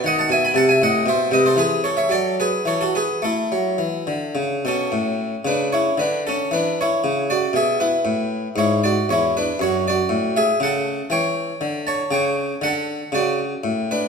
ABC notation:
X:1
M:3/4
L:1/16
Q:1/4=117
K:A
V:1 name="Harpsichord"
[^df] [fa] [eg] [gb] [fa] [eg] [df]2 [^Be]2 [=Bd] [A^B] | [GB]2 [Ac] [ce] [Ad]2 [GB]2 [Ac] [FA] [GB]2 | [EA]8- [EA]2 [CA]2- | [CA]4 [DB]2 [Ec]2 [DB]2 [CA]2 |
[DB]2 [Ec]4 [Fd]2 [Ge]2 [EB]2- | [EB]4 [Ec]2 [Fd]2 [Ec]2 [DB]2 | [Fc]2 [Fd]4 [Ge]2 [Af]4 | [K:D] [cg]6 [ca]2 [cg]4 |
[Af]4 [Fd]2 z4 [DB]2 |]
V:2 name="Harpsichord" clef=bass
^D,2 B,,2 ^B,,2 A,,2 =B,,2 ^B,,2 | E,4 F,4 E,4 | A,2 F,2 E,2 D,2 C,2 B,,2 | A,,4 C,4 D,4 |
E,4 C,4 B,,4 | A,,4 G,,4 E,,4 | F,,4 A,,4 C,4 | [K:D] E,4 D,4 C,4 |
D,4 C,4 A,,4 |]